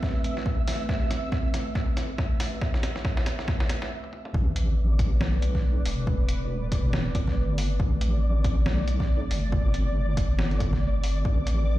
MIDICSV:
0, 0, Header, 1, 6, 480
1, 0, Start_track
1, 0, Key_signature, 0, "minor"
1, 0, Tempo, 431655
1, 991, Time_signature, 4, 2, 24, 8
1, 13108, End_track
2, 0, Start_track
2, 0, Title_t, "Synth texture"
2, 0, Program_c, 0, 99
2, 0, Note_on_c, 0, 76, 83
2, 4351, Note_off_c, 0, 76, 0
2, 4830, Note_on_c, 0, 74, 89
2, 13108, Note_off_c, 0, 74, 0
2, 13108, End_track
3, 0, Start_track
3, 0, Title_t, "Analog synth pad"
3, 0, Program_c, 1, 89
3, 0, Note_on_c, 1, 57, 78
3, 0, Note_on_c, 1, 60, 70
3, 0, Note_on_c, 1, 71, 84
3, 4306, Note_off_c, 1, 57, 0
3, 4306, Note_off_c, 1, 60, 0
3, 4306, Note_off_c, 1, 71, 0
3, 4833, Note_on_c, 1, 60, 74
3, 4834, Note_on_c, 1, 57, 84
3, 4834, Note_on_c, 1, 71, 88
3, 8661, Note_off_c, 1, 71, 0
3, 8671, Note_on_c, 1, 74, 90
3, 12500, Note_off_c, 1, 74, 0
3, 12510, Note_on_c, 1, 71, 89
3, 13108, Note_off_c, 1, 57, 0
3, 13108, Note_off_c, 1, 60, 0
3, 13108, Note_off_c, 1, 71, 0
3, 13108, End_track
4, 0, Start_track
4, 0, Title_t, "Wobble bass"
4, 0, Program_c, 2, 39
4, 30, Note_on_c, 2, 33, 95
4, 697, Note_off_c, 2, 33, 0
4, 697, Note_on_c, 2, 32, 95
4, 974, Note_off_c, 2, 32, 0
4, 989, Note_on_c, 2, 33, 93
4, 1454, Note_off_c, 2, 33, 0
4, 1469, Note_on_c, 2, 31, 100
4, 2414, Note_off_c, 2, 31, 0
4, 2671, Note_on_c, 2, 33, 98
4, 3375, Note_off_c, 2, 33, 0
4, 3388, Note_on_c, 2, 31, 103
4, 3853, Note_off_c, 2, 31, 0
4, 3869, Note_on_c, 2, 36, 97
4, 4334, Note_off_c, 2, 36, 0
4, 4830, Note_on_c, 2, 33, 97
4, 5774, Note_off_c, 2, 33, 0
4, 5793, Note_on_c, 2, 35, 98
4, 6496, Note_off_c, 2, 35, 0
4, 6512, Note_on_c, 2, 28, 97
4, 7935, Note_off_c, 2, 28, 0
4, 8191, Note_on_c, 2, 31, 99
4, 8655, Note_off_c, 2, 31, 0
4, 8670, Note_on_c, 2, 33, 99
4, 9614, Note_off_c, 2, 33, 0
4, 9630, Note_on_c, 2, 35, 97
4, 10334, Note_off_c, 2, 35, 0
4, 10351, Note_on_c, 2, 31, 98
4, 11295, Note_off_c, 2, 31, 0
4, 11310, Note_on_c, 2, 31, 99
4, 12494, Note_off_c, 2, 31, 0
4, 12511, Note_on_c, 2, 33, 97
4, 13108, Note_off_c, 2, 33, 0
4, 13108, End_track
5, 0, Start_track
5, 0, Title_t, "Sub drop"
5, 0, Program_c, 3, 103
5, 4831, Note_on_c, 3, 60, 73
5, 6751, Note_off_c, 3, 60, 0
5, 13108, End_track
6, 0, Start_track
6, 0, Title_t, "Drums"
6, 29, Note_on_c, 9, 36, 93
6, 31, Note_on_c, 9, 38, 65
6, 140, Note_off_c, 9, 36, 0
6, 142, Note_off_c, 9, 38, 0
6, 271, Note_on_c, 9, 42, 79
6, 382, Note_off_c, 9, 42, 0
6, 411, Note_on_c, 9, 38, 58
6, 509, Note_on_c, 9, 36, 95
6, 522, Note_off_c, 9, 38, 0
6, 620, Note_off_c, 9, 36, 0
6, 751, Note_on_c, 9, 38, 68
6, 751, Note_on_c, 9, 46, 92
6, 862, Note_off_c, 9, 38, 0
6, 862, Note_off_c, 9, 46, 0
6, 989, Note_on_c, 9, 36, 95
6, 990, Note_on_c, 9, 38, 73
6, 1100, Note_off_c, 9, 36, 0
6, 1101, Note_off_c, 9, 38, 0
6, 1230, Note_on_c, 9, 38, 78
6, 1230, Note_on_c, 9, 42, 84
6, 1342, Note_off_c, 9, 38, 0
6, 1342, Note_off_c, 9, 42, 0
6, 1469, Note_on_c, 9, 36, 99
6, 1470, Note_on_c, 9, 38, 78
6, 1580, Note_off_c, 9, 36, 0
6, 1581, Note_off_c, 9, 38, 0
6, 1711, Note_on_c, 9, 38, 77
6, 1711, Note_on_c, 9, 42, 79
6, 1822, Note_off_c, 9, 38, 0
6, 1822, Note_off_c, 9, 42, 0
6, 1949, Note_on_c, 9, 36, 95
6, 1950, Note_on_c, 9, 38, 81
6, 2060, Note_off_c, 9, 36, 0
6, 2061, Note_off_c, 9, 38, 0
6, 2189, Note_on_c, 9, 38, 83
6, 2189, Note_on_c, 9, 42, 78
6, 2301, Note_off_c, 9, 38, 0
6, 2301, Note_off_c, 9, 42, 0
6, 2428, Note_on_c, 9, 36, 98
6, 2429, Note_on_c, 9, 38, 89
6, 2539, Note_off_c, 9, 36, 0
6, 2540, Note_off_c, 9, 38, 0
6, 2669, Note_on_c, 9, 38, 88
6, 2669, Note_on_c, 9, 46, 90
6, 2780, Note_off_c, 9, 38, 0
6, 2780, Note_off_c, 9, 46, 0
6, 2908, Note_on_c, 9, 36, 94
6, 2908, Note_on_c, 9, 38, 89
6, 3019, Note_off_c, 9, 36, 0
6, 3019, Note_off_c, 9, 38, 0
6, 3048, Note_on_c, 9, 38, 81
6, 3149, Note_off_c, 9, 38, 0
6, 3149, Note_on_c, 9, 38, 97
6, 3149, Note_on_c, 9, 42, 81
6, 3260, Note_off_c, 9, 38, 0
6, 3260, Note_off_c, 9, 42, 0
6, 3288, Note_on_c, 9, 38, 84
6, 3388, Note_off_c, 9, 38, 0
6, 3388, Note_on_c, 9, 36, 98
6, 3388, Note_on_c, 9, 38, 98
6, 3499, Note_off_c, 9, 36, 0
6, 3500, Note_off_c, 9, 38, 0
6, 3528, Note_on_c, 9, 38, 91
6, 3628, Note_off_c, 9, 38, 0
6, 3628, Note_on_c, 9, 38, 101
6, 3628, Note_on_c, 9, 42, 78
6, 3739, Note_off_c, 9, 38, 0
6, 3739, Note_off_c, 9, 42, 0
6, 3768, Note_on_c, 9, 38, 84
6, 3868, Note_off_c, 9, 38, 0
6, 3868, Note_on_c, 9, 38, 100
6, 3869, Note_on_c, 9, 36, 97
6, 3979, Note_off_c, 9, 38, 0
6, 3980, Note_off_c, 9, 36, 0
6, 4007, Note_on_c, 9, 38, 89
6, 4109, Note_off_c, 9, 38, 0
6, 4109, Note_on_c, 9, 38, 103
6, 4109, Note_on_c, 9, 42, 76
6, 4220, Note_off_c, 9, 38, 0
6, 4220, Note_off_c, 9, 42, 0
6, 4248, Note_on_c, 9, 38, 89
6, 4359, Note_off_c, 9, 38, 0
6, 4489, Note_on_c, 9, 48, 55
6, 4590, Note_on_c, 9, 47, 82
6, 4600, Note_off_c, 9, 48, 0
6, 4701, Note_off_c, 9, 47, 0
6, 4729, Note_on_c, 9, 45, 80
6, 4830, Note_on_c, 9, 36, 115
6, 4840, Note_off_c, 9, 45, 0
6, 4942, Note_off_c, 9, 36, 0
6, 5071, Note_on_c, 9, 42, 86
6, 5182, Note_off_c, 9, 42, 0
6, 5551, Note_on_c, 9, 36, 107
6, 5551, Note_on_c, 9, 42, 79
6, 5662, Note_off_c, 9, 36, 0
6, 5662, Note_off_c, 9, 42, 0
6, 5791, Note_on_c, 9, 38, 116
6, 5902, Note_off_c, 9, 38, 0
6, 6031, Note_on_c, 9, 42, 83
6, 6142, Note_off_c, 9, 42, 0
6, 6170, Note_on_c, 9, 36, 60
6, 6170, Note_on_c, 9, 38, 37
6, 6281, Note_off_c, 9, 36, 0
6, 6281, Note_off_c, 9, 38, 0
6, 6511, Note_on_c, 9, 46, 98
6, 6622, Note_off_c, 9, 46, 0
6, 6751, Note_on_c, 9, 36, 123
6, 6862, Note_off_c, 9, 36, 0
6, 6989, Note_on_c, 9, 42, 87
6, 7101, Note_off_c, 9, 42, 0
6, 7470, Note_on_c, 9, 36, 112
6, 7470, Note_on_c, 9, 42, 80
6, 7581, Note_off_c, 9, 36, 0
6, 7581, Note_off_c, 9, 42, 0
6, 7708, Note_on_c, 9, 38, 127
6, 7819, Note_off_c, 9, 38, 0
6, 7949, Note_on_c, 9, 42, 82
6, 7950, Note_on_c, 9, 36, 112
6, 8061, Note_off_c, 9, 36, 0
6, 8061, Note_off_c, 9, 42, 0
6, 8088, Note_on_c, 9, 38, 37
6, 8089, Note_on_c, 9, 36, 62
6, 8199, Note_off_c, 9, 38, 0
6, 8200, Note_off_c, 9, 36, 0
6, 8429, Note_on_c, 9, 46, 95
6, 8540, Note_off_c, 9, 46, 0
6, 8670, Note_on_c, 9, 36, 126
6, 8781, Note_off_c, 9, 36, 0
6, 8909, Note_on_c, 9, 42, 85
6, 9021, Note_off_c, 9, 42, 0
6, 9390, Note_on_c, 9, 36, 109
6, 9390, Note_on_c, 9, 42, 80
6, 9501, Note_off_c, 9, 36, 0
6, 9501, Note_off_c, 9, 42, 0
6, 9630, Note_on_c, 9, 38, 126
6, 9741, Note_off_c, 9, 38, 0
6, 9870, Note_on_c, 9, 42, 78
6, 9981, Note_off_c, 9, 42, 0
6, 10009, Note_on_c, 9, 36, 65
6, 10009, Note_on_c, 9, 38, 38
6, 10120, Note_off_c, 9, 36, 0
6, 10121, Note_off_c, 9, 38, 0
6, 10351, Note_on_c, 9, 46, 90
6, 10462, Note_off_c, 9, 46, 0
6, 10590, Note_on_c, 9, 36, 123
6, 10702, Note_off_c, 9, 36, 0
6, 10831, Note_on_c, 9, 42, 80
6, 10942, Note_off_c, 9, 42, 0
6, 11311, Note_on_c, 9, 36, 110
6, 11311, Note_on_c, 9, 42, 79
6, 11422, Note_off_c, 9, 36, 0
6, 11422, Note_off_c, 9, 42, 0
6, 11550, Note_on_c, 9, 38, 127
6, 11662, Note_off_c, 9, 38, 0
6, 11691, Note_on_c, 9, 42, 36
6, 11791, Note_off_c, 9, 42, 0
6, 11791, Note_on_c, 9, 36, 112
6, 11791, Note_on_c, 9, 42, 76
6, 11902, Note_off_c, 9, 36, 0
6, 11902, Note_off_c, 9, 42, 0
6, 11930, Note_on_c, 9, 36, 65
6, 11930, Note_on_c, 9, 38, 38
6, 12042, Note_off_c, 9, 36, 0
6, 12042, Note_off_c, 9, 38, 0
6, 12271, Note_on_c, 9, 46, 91
6, 12383, Note_off_c, 9, 46, 0
6, 12511, Note_on_c, 9, 36, 120
6, 12622, Note_off_c, 9, 36, 0
6, 12752, Note_on_c, 9, 42, 76
6, 12863, Note_off_c, 9, 42, 0
6, 13108, End_track
0, 0, End_of_file